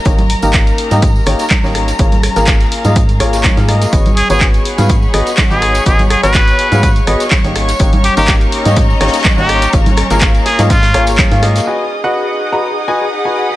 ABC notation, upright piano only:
X:1
M:4/4
L:1/16
Q:"Swing 16ths" 1/4=124
K:G#dor
V:1 name="Upright piano"
[A,D=Gc] z2 [A,DGA]4 [A,DGd] z2 [A,DGc] z2 [A,DGc]2 z | [A,EGc] z2 [A,EGA]4 [A,EGd] z2 [A,EGc]3 [A,EGe] [A,EGd]2 | [B,FGd] z2 [B,FGc]4 [B,FGe] z2 [B,FGd] z2 [B,FGd]2 z | [B,FGd] z2 [B,FGc]4 [B,FGe] z2 [B,FGd] z2 [A,D=Gc]2 z |
[A,D=Gc] z2 [A,DGA]4 [A,DGd] z2 [A,DGc] z2 [A,DGc]2 z | [A,EGc] z2 [A,EGA]4 [A,EGd] z2 [A,EGc]3 [A,EGe] [A,EGd]2 | [FBdg] z2 [FBdf]4 [FBda] z2 [FBdg] z2 [FBdg]2 z |]